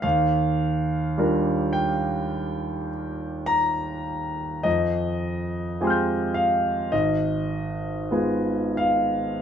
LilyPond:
\new Staff \with { instrumentName = "Grand piano" } { \time 4/4 \key ees \major \tempo 4 = 52 << { ees,4 <g d' f' bes'>2. | f,4 <aes c' f' g' aes'' c''' f''' g'''>4 aes,,4 <aes ces' f' aes'>4 | } \\ { f''4. g''4 r8 bes''4 | ees''4. f''8 ees''4. f''8 | } >> }